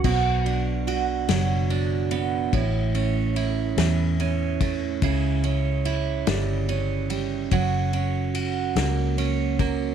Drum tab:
CC |x-----|------|------|------|
RD |-xxxxx|xxxxxx|xxxxxx|xxxxxx|
SD |---o--|---o--|---o--|---o--|
BD |o-----|o----o|o-----|o----o|